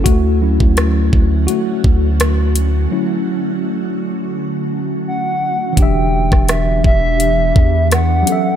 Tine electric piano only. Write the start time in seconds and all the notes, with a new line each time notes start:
0.04 A3 F#4
0.41 F#3 C#4 E4
1.47 A3 F#4
2.91 F#3 C#4 E4
5.73 E3 D4
5.79 G4 E5
8.23 F#3 C#4
8.29 A4 E5